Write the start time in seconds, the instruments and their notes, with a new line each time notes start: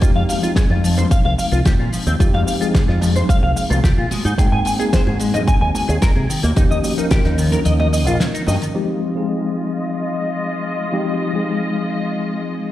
0.01 fingered electric bass F2, tine electric piano F3 G#3 C4 D#4 G4, clean electric guitar F4, kick, closed hi-hat, muted conga, cabasa
0.16 fingered electric bass F2, clean electric guitar F5
0.29 clean electric guitar F5, open hi-hat, muted conga, high conga, cabasa
0.42 tine electric piano F3 G#3 C4 D#4, clean electric guitar F4, closed hi-hat, cabasa
0.56 clean electric guitar G#4, kick, snare, closed hi-hat, cabasa
0.70 fingered electric bass F2, clean electric guitar F4, muted conga
0.84 clean electric guitar F3, open hi-hat, cabasa
0.97 clean electric guitar C5, closed hi-hat, muted conga, low conga, cabasa
1.11 clean electric guitar F5, muted fingered electric bass stroke, kick, closed hi-hat, cabasa
1.25 fingered electric bass C2, clean electric guitar F5
1.38 clean electric guitar F5, open hi-hat, muted conga, cabasa
1.51 fingered electric bass C2, clean electric guitar F4, closed hi-hat, cabasa
1.65 fingered electric bass F1, clean electric guitar G4, kick, snare, closed hi-hat, muted conga, cabasa
1.79 fingered electric bass A#2, clean electric guitar F4
1.93 clean electric guitar F3, open hi-hat, cabasa
2.06 fingered electric bass D#2, clean electric guitar C4, closed hi-hat, muted conga, cabasa
2.19 fingered electric bass F2, tine electric piano F3 G#3 C4 D#4 G4, clean electric guitar F4, kick, closed hi-hat, cabasa
2.34 fingered electric bass F2, clean electric guitar F5, muted conga
2.47 clean electric guitar F5, open hi-hat, cabasa
2.60 tine electric piano F3 G#3 C4 D#4 G#4, clean electric guitar F4, closed hi-hat, cabasa
2.74 clean electric guitar G#4, kick, snare, closed hi-hat, muted conga, cabasa
2.88 fingered electric bass F2, clean electric guitar F4, snare
3.01 clean electric guitar F3, open hi-hat, muted conga, cabasa
3.16 clean electric guitar C5, closed hi-hat, low conga, cabasa
3.29 clean electric guitar F5, kick, closed hi-hat, cabasa
3.43 fingered electric bass C2, clean electric guitar F5, muted conga
3.56 clean electric guitar F5, open hi-hat, cabasa
3.70 fingered electric bass C2, clean electric guitar F4, closed hi-hat, muted conga, cabasa
3.84 fingered electric bass F1, clean electric guitar G4, kick, snare, closed hi-hat, cabasa
3.98 fingered electric bass A#2, clean electric guitar F4
4.11 clean electric guitar G#3, muted fingered electric bass stroke, open hi-hat, muted conga, high conga, cabasa
4.25 fingered electric bass G#2, clean electric guitar D#4, closed hi-hat, cabasa
4.38 fingered electric bass G#2, tine electric piano G#3 A#3 C4 D#4 G5, clean electric guitar G#4, kick, closed hi-hat, muted conga, cabasa
4.52 fingered electric bass G#2, clean electric guitar G#5
4.65 clean electric guitar G#5, open hi-hat, high conga, cabasa
4.79 tine electric piano G#3 A#3 C4 D#4 G#4, clean electric guitar G#4, closed hi-hat, muted conga, cabasa
4.93 clean electric guitar C5, kick, snare, closed hi-hat, cabasa
5.07 fingered electric bass G#2, clean electric guitar G#4, muted conga
5.20 clean electric guitar G#3, open hi-hat, cabasa
5.34 clean electric guitar D#5, closed hi-hat, low conga, cabasa
5.47 clean electric guitar G#5, muted fingered electric bass stroke, kick, closed hi-hat, muted conga, cabasa
5.61 fingered electric bass D#2, clean electric guitar G#5
5.75 clean electric guitar G#5, open hi-hat, muted conga, cabasa
5.89 fingered electric bass D#2, clean electric guitar G#4, closed hi-hat, cabasa
6.02 fingered electric bass G#1, clean electric guitar A#4, kick, snare, closed hi-hat, cabasa
6.16 fingered electric bass C3, clean electric guitar G#4, muted conga
6.29 clean electric guitar D#3, open hi-hat, cabasa
6.43 fingered electric bass D#2, clean electric guitar A#3, closed hi-hat, muted conga, cabasa
6.56 fingered electric bass D#2, tine electric piano F3 A#3 C#4 D#4 G4, clean electric guitar D#4, kick, closed hi-hat, cabasa
6.71 fingered electric bass D#2, clean electric guitar D#5, cabasa
6.84 clean electric guitar D#5, open hi-hat, muted conga, high conga, cabasa
6.97 tine electric piano F3 A#3 C#4 D#4 A#4, clean electric guitar D#4, closed hi-hat, cabasa
7.11 clean electric guitar G4, kick, snare, closed hi-hat, muted conga, cabasa
7.25 fingered electric bass D#2, clean electric guitar D#4, snare, closed hi-hat
7.38 clean electric guitar D#3, open hi-hat, cabasa
7.52 clean electric guitar A#4, closed hi-hat, muted conga, low conga, cabasa
7.65 fingered electric bass D#2, clean electric guitar D#5, closed hi-hat, cabasa
7.80 clean electric guitar D#5, muted conga
7.93 clean electric guitar D#5, open hi-hat, cabasa
8.07 fingered electric bass A#1, clean electric guitar F4, closed hi-hat, cabasa
8.20 clean electric guitar C#4, snare, closed hi-hat, muted conga, cabasa
8.34 clean electric guitar D#4, closed hi-hat, cabasa
8.47 fingered electric bass G2, clean electric guitar D#5, open hi-hat, muted conga, high conga, cabasa
8.62 clean electric guitar D#3, closed hi-hat, cabasa
8.74 tine electric piano F3 G#3 C4 D#4 G4, string section G#3 F4 D#5
9.15 tine electric piano F3 G#3 C4 D#4 G#4
10.92 tine electric piano F3 G#3 C4 D#4 G4
11.33 tine electric piano F3 G#3 C4 D#4 G#4